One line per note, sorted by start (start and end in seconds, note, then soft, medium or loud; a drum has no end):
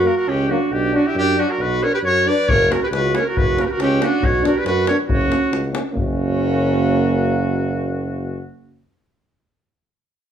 0.05 0.14 F#3 medium
0.05 0.14 A#3 medium
0.05 0.16 F#4 medium
0.05 0.17 A#4 medium
0.16 0.29 F#4 medium
0.16 0.30 A#4 medium
0.28 0.52 C#2 loud
0.28 0.50 C#4 medium
0.28 0.52 G4 loud
0.48 0.58 F#3 medium
0.48 0.58 A#3 medium
0.48 0.73 D4 medium
0.48 0.74 F#4 medium
0.71 0.95 B1 loud
0.71 0.94 D4 medium
0.71 0.97 G4 medium
0.93 1.02 F#3 medium
0.93 1.02 D4 medium
0.93 1.08 D4 medium
0.93 1.08 F#4 medium
1.06 1.17 E4 medium
1.06 1.16 G4 medium
1.15 1.39 F#2 loud
1.15 1.38 D4 medium
1.15 1.41 G4 loud
1.37 1.47 F#3 medium
1.37 1.46 D4 medium
1.37 1.50 D4 medium
1.37 1.52 F#4 loud
1.49 1.61 F#4 medium
1.49 1.63 A#4 medium
1.58 1.83 B1 loud
1.58 1.85 F#4 loud
1.58 1.84 B4 loud
1.80 1.89 F#3 medium
1.80 1.91 D4 medium
1.80 1.93 C#5 loud
1.84 1.93 A#4 medium
1.94 1.99 G4 medium
1.94 1.98 B4 medium
2.02 2.27 F#2 loud
2.02 2.31 F#4 medium
2.02 2.29 C#5 loud
2.25 2.33 F#3 medium
2.25 2.35 D4 medium
2.25 2.50 D5 loud
2.29 2.52 B4 medium
2.47 2.71 F#1 loud
2.47 2.73 C#5 loud
2.47 davul low loud
2.51 2.74 A#4 loud
2.60 davul high soft
2.68 2.77 A#3 medium
2.68 2.79 C#4 medium
2.68 2.81 A#4 medium
2.68 davul high medium
2.73 2.82 F#4 medium
2.83 2.89 G4 medium
2.83 2.87 B4 loud
2.91 3.15 C#2 loud
2.91 3.17 B4 loud
2.91 davul high medium
2.97 3.20 F#4 medium
3.05 davul high soft
3.12 3.21 A#3 medium
3.12 3.22 C#4 medium
3.12 3.25 C#5 loud
3.12 davul high medium
3.18 3.26 A#4 medium
3.26 3.39 F#4 medium
3.26 3.38 A#4 medium
3.35 3.59 F#1 loud
3.35 3.62 B4 loud
3.35 davul low loud
3.39 3.61 F#4 loud
3.47 davul high soft
3.56 3.64 A#3 medium
3.56 3.65 C#4 medium
3.56 davul high medium
3.61 3.66 F#4 medium
3.61 3.64 A#4 medium
3.65 3.74 G4 medium
3.65 3.72 B4 medium
3.70 3.80 F#4 medium
3.70 3.79 A#4 medium
3.78 4.02 C#2 loud
3.78 4.05 C#4 medium
3.78 4.05 G4 loud
3.78 davul high medium
3.91 davul high soft
4.00 4.09 A#3 medium
4.00 4.09 C#4 medium
4.00 4.26 D4 medium
4.00 4.26 F#4 medium
4.00 davul high medium
4.21 4.45 B1 medium
4.21 4.44 F#4 medium
4.21 davul low loud
4.25 4.44 C#5 loud
4.35 davul high soft
4.43 4.52 B3 medium
4.43 4.51 D4 medium
4.43 4.58 F#4 medium
4.43 davul high medium
4.47 4.60 A#4 medium
4.57 4.66 G4 medium
4.57 4.66 B4 medium
4.64 4.88 F#2 loud
4.64 4.86 F#4 loud
4.64 4.86 B4 loud
4.64 davul high medium
4.78 davul high soft
4.85 4.94 B3 medium
4.85 4.96 D4 medium
4.85 4.98 A#4 medium
4.85 4.97 C#5 medium
4.85 davul high medium
5.08 5.32 F#1 loud
5.08 5.70 C#4 medium
5.08 5.69 F#4 loud
5.08 davul low loud
5.21 davul high soft
5.29 5.37 A#3 medium
5.29 5.38 C#4 medium
5.29 davul high medium
5.44 davul high soft
5.51 5.75 C#2 medium
5.51 davul high medium
5.64 davul high soft
5.71 5.80 A#3 medium
5.71 5.81 C#4 medium
5.71 davul high medium
5.93 8.43 F#1 loud
5.93 8.42 A#3 medium
5.93 8.42 C#4 medium
5.93 8.43 C#4 medium
5.93 8.43 F#4 medium
5.93 davul low medium